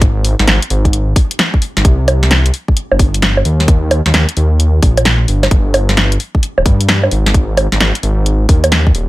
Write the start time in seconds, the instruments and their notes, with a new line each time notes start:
Already playing: detuned saw bass G#1
0.01 kick, closed hi-hat
0.25 open hi-hat
0.39 detuned saw bass G#1, snare
0.47 detuned saw bass G#1, snare, closed hi-hat
0.62 closed hi-hat
0.70 detuned saw bass G#1, open hi-hat
0.85 kick, closed hi-hat
0.93 closed hi-hat
1.16 kick, open hi-hat
1.31 closed hi-hat
1.39 snare, closed hi-hat
1.54 kick
1.62 open hi-hat
1.77 detuned saw bass G#1, snare, closed hi-hat
1.85 detuned saw bass C2, kick, closed hi-hat
2.08 open hi-hat, high bongo
2.23 snare
2.31 snare, closed hi-hat
2.46 closed hi-hat
2.54 open hi-hat
2.68 kick
2.77 closed hi-hat
2.91 detuned saw bass G1, high bongo
2.99 detuned saw bass G1, kick, open hi-hat
3.14 closed hi-hat
3.22 snare, closed hi-hat
3.37 high bongo
3.45 detuned saw bass D#2, open hi-hat
3.60 snare
3.68 kick, closed hi-hat
3.91 open hi-hat, high bongo
4.06 detuned saw bass D#2, snare
4.14 detuned saw bass D#2, snare, closed hi-hat
4.29 closed hi-hat
4.37 detuned saw bass D#2, open hi-hat
4.60 closed hi-hat
4.83 detuned saw bass A#1, kick, open hi-hat
4.97 closed hi-hat, high bongo
5.05 snare, closed hi-hat
5.28 detuned saw bass G1, open hi-hat
5.43 snare, high bongo
5.51 detuned saw bass G1, kick, closed hi-hat
5.74 open hi-hat, high bongo
5.89 snare
5.97 snare, closed hi-hat
6.12 closed hi-hat
6.20 open hi-hat
6.35 kick
6.43 closed hi-hat
6.58 detuned saw bass D1, high bongo
6.66 detuned saw bass G2, kick, open hi-hat
6.81 closed hi-hat
6.89 snare, closed hi-hat
7.03 high bongo
7.11 detuned saw bass G#1, open hi-hat
7.26 snare
7.34 kick, closed hi-hat
7.57 open hi-hat, high bongo
7.72 detuned saw bass G#1, snare
7.80 detuned saw bass G#1, snare, closed hi-hat
7.95 closed hi-hat
8.03 detuned saw bass G#1, open hi-hat
8.26 closed hi-hat
8.49 detuned saw bass D#2, kick, open hi-hat
8.64 closed hi-hat, high bongo
8.72 snare, closed hi-hat
8.87 kick
8.95 detuned saw bass D#1, open hi-hat